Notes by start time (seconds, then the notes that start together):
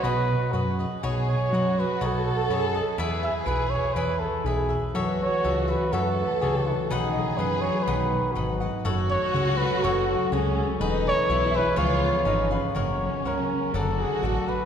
Already playing: F#4
0.03 B1 F#4 G#4 B4 D#5
0.52 F#2 F#4 G#4 B4 D#5
0.79 G#4 B4 D#5
1.03 B1 F#4 G#4 B4 C#5 D#5
1.29 C#5
1.52 F#2 F#4 B4 C#5 D#5
1.79 B4 C#5 D#5
2.01 B1 F#4 A4 B4 C#5 D#5
2.07 F#4
2.50 F#2 F#4 G#4 B4 C#5 D#5
2.75 B4 C#5 D#5
2.98 E2 E4 G#4 B4 E5
3.23 E5
3.46 B1 E4 G#4 B4 E5
3.70 C#5
3.94 E2 E4 G#4 B4 E5
4.20 A4
4.44 B1 E4 G#4 B4 E5
4.69 G#4 B4 E5
4.94 F#2 E3 F#4 A4 C#5 E5
5.20 A3 C#5
5.43 C#2 C#4 F#4 A4 C#5 E5
5.62 C#5
5.68 F#4 A4 B4 C#5 E5
5.92 F#2 E3 F#4 A4 C#5 E5
6.18 A3
6.40 C#2 C#4 F#4 G#4 C#5 E5
6.67 F#4
6.90 B1 D#3 D#4 G#4 B4 D#5 F#5
7.12 F#3 D#5
7.38 F#2 B3 D#4 B4 D#5 F#5
7.61 F#4 C#5
7.83 D#3 B4
7.87 B1 D#4 B4 D#5 F#5
8.10 F#3
8.32 G#1 B3 D#4 F#4
8.36 B4 D#5 F#5
8.60 F#4 B4 D#5 F#5
8.85 F#1 F#3 F#4 A4 C#5 F#5
9.10 A3 C#5
9.34 C#2 C#4 F#4 A4 C#5 F#5
9.58 A4 B4
9.83 F#1 F#3 F#4 A4 C#5 F#5
10.08 A3
10.32 C#2 C#4 F#4 G#4 C#5 F#5
10.56 A4
10.81 E1 E3 D#4 G#4 B4
11.05 G#3 C#5
11.27 B1 B3 E4 G#4 B4 E5
11.53 G#4 B4 E5
11.76 C#2 F3 F4 G#4 B4 C#5 F5
12.01 B3
12.25 G#1 C#4 D#4 G#4 B4 C#5 F5
12.51 C#4 G#4 B4 C#5 F5
12.73 F#1 C#3 C#4 F#4 A#4 C#5 F#5
13.01 F#3
13.25 C#2 A#3 F#4 A#4 C#5 F#5
13.73 F#1 D3 D4 F#4 A4 D5 F#5
13.77 A4
13.99 F#3 G#4
14.23 A1 A3 D4 A4 D5 F#5
14.47 A4 B4 D5 F#5